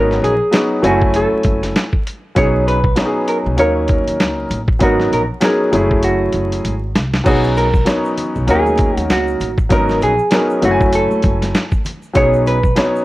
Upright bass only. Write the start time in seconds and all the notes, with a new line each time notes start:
Already playing: G#1
0.22 A#1
0.83 F#1
1.32 muted upright bass stroke
1.45 F#1
2.36 B1
3.46 B1
3.59 D#2
4.08 D#2
4.20 C#2
4.50 A1
4.81 G#1
5.12 A#1
5.73 F#1
6.34 F#1
6.65 G#1
6.96 C2
7.26 B1
8.36 B1
8.48 D#2
8.97 D#2
9.10 C#2
9.40 A1
9.71 G#1
10.02 A#1
10.62 F#1
11.11 muted upright bass stroke
11.24 F#1
12.16 B1